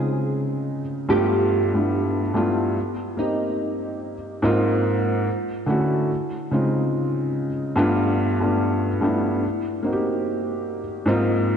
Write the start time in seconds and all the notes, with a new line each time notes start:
Already playing: C#3 G#3 C4 D#4 F4 G#4
1.09 G2 A3 B3 D4 F4 G4
1.74 G2 A3 B3 D4 E4
2.34 G2 A3 B3 D4 F4
3.17 A#3 C4 D#4 G4
4.42 G#2 A#3 C4 D#4 F4
5.66 D3 A3 C#4 E4 F#4
6.51 C#3 G#3 C4 D#4 F4
7.76 G2 A3 B3 D4 F4
8.40 G2 A3 B3 D4 F4
9.01 G2 A3 B3 D4 E4
9.83 A#3 C4 D#4 F#4
9.93 G4
11.06 G#2 A#3 C4 D#4 F4